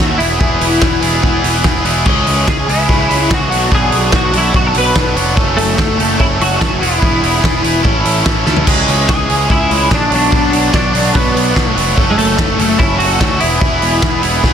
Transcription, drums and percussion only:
0.00 snare
0.20 open hi-hat
0.41 kick
0.61 open hi-hat
0.82 kick, snare
1.02 open hi-hat
1.23 kick
1.44 open hi-hat
1.64 kick, snare
1.85 open hi-hat
2.06 kick, crash
2.27 open hi-hat
2.48 kick, snare
2.69 open hi-hat
2.89 kick
3.11 open hi-hat
3.31 kick, snare
3.52 open hi-hat
3.72 kick
3.92 open hi-hat
4.12 kick, snare
4.33 open hi-hat
4.54 kick
4.74 open hi-hat
4.96 kick, snare
5.17 open hi-hat
5.37 kick
5.58 open hi-hat
5.78 kick, snare
6.00 open hi-hat
6.20 kick
6.41 open hi-hat
6.61 kick, snare
6.83 open hi-hat
7.02 kick
7.23 open hi-hat
7.44 kick, snare
7.64 open hi-hat
7.85 kick
8.05 open hi-hat
8.26 kick, snare
8.46 snare
8.57 floor tom
8.67 kick, crash
8.88 open hi-hat
9.09 kick, snare
9.29 open hi-hat
9.50 kick
9.71 open hi-hat
9.91 kick, snare
10.12 open hi-hat
10.32 kick
10.53 open hi-hat
10.74 kick, snare
10.95 open hi-hat
11.15 kick
11.37 open hi-hat
11.56 kick, snare
11.77 open hi-hat
11.97 kick
12.18 open hi-hat
12.39 kick, snare
12.59 open hi-hat
12.79 kick
13.00 open hi-hat
13.21 kick, snare
13.40 open hi-hat
13.61 kick
13.82 open hi-hat
14.02 kick, snare
14.23 open hi-hat
14.44 kick, snare

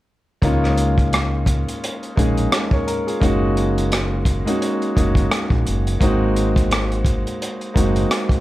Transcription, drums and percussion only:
0.42 kick, closed hi-hat
0.64 cross-stick
0.77 closed hi-hat
0.98 kick, closed hi-hat
1.13 cross-stick, closed hi-hat
1.46 kick, closed hi-hat
1.68 closed hi-hat
1.84 closed hi-hat
2.03 closed hi-hat
2.17 kick, closed hi-hat
2.37 closed hi-hat
2.52 cross-stick, closed hi-hat
2.71 kick
2.88 closed hi-hat
3.08 closed hi-hat
3.22 kick, closed hi-hat
3.57 closed hi-hat
3.78 closed hi-hat
3.92 cross-stick, closed hi-hat
4.25 kick, closed hi-hat
4.47 closed hi-hat
4.62 closed hi-hat
4.82 closed hi-hat
4.97 kick, closed hi-hat
5.15 kick, closed hi-hat
5.32 cross-stick, closed hi-hat
5.50 kick
5.67 closed hi-hat
5.87 closed hi-hat
6.01 kick, closed hi-hat
6.36 closed hi-hat
6.56 kick, closed hi-hat
6.71 cross-stick, closed hi-hat
6.92 closed hi-hat
7.05 kick, closed hi-hat
7.27 closed hi-hat
7.42 closed hi-hat
7.61 closed hi-hat
7.76 kick, closed hi-hat
7.96 closed hi-hat
8.11 cross-stick, closed hi-hat
8.29 kick, closed hi-hat

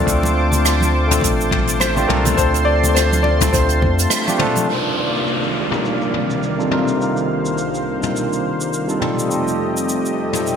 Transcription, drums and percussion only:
0.07 kick, closed hi-hat, shaker
0.23 muted conga, shaker
0.52 closed hi-hat, low conga, shaker
0.65 cross-stick, closed hi-hat, shaker
0.81 muted conga, high conga, shaker
1.11 closed hi-hat, mid tom, shaker
1.21 kick, closed hi-hat, muted conga, shaker
1.41 shaker
1.51 kick, mid tom
1.67 closed hi-hat, shaker
1.80 cross-stick, closed hi-hat, muted conga, shaker
1.96 low conga, shaker
2.10 mid tom
2.25 closed hi-hat, muted conga, low conga, shaker
2.37 kick, closed hi-hat, shaker
2.54 closed hi-hat, shaker
2.83 closed hi-hat, muted conga, low conga, shaker
2.96 cross-stick, closed hi-hat, shaker
3.12 closed hi-hat, high conga, shaker
3.24 muted conga
3.40 kick, closed hi-hat, mid tom, shaker
3.53 kick, closed hi-hat, shaker
3.69 closed hi-hat, shaker
3.82 kick, muted conga, low conga
3.99 closed hi-hat, shaker
4.10 cross-stick, closed hi-hat, shaker
4.28 closed hi-hat, muted conga, shaker
4.39 mid tom, low conga
4.55 closed hi-hat, high conga, shaker
4.69 shaker
4.86 shaker
5.15 shaker
5.27 shaker
5.43 shaker
5.71 mid tom, shaker
5.85 shaker
6.01 shaker
6.14 mid tom
6.30 shaker
6.43 shaker
6.60 shaker
6.71 mid tom
6.88 shaker
7.01 shaker
7.17 shaker
7.45 shaker
7.58 shaker
7.74 shaker
8.03 mid tom, shaker
8.16 shaker
8.33 shaker
8.60 shaker
8.73 shaker
8.89 shaker
9.02 mid tom
9.19 shaker
9.31 shaker
9.48 shaker
9.77 shaker
9.89 shaker
10.05 shaker
10.33 mid tom, shaker
10.47 shaker

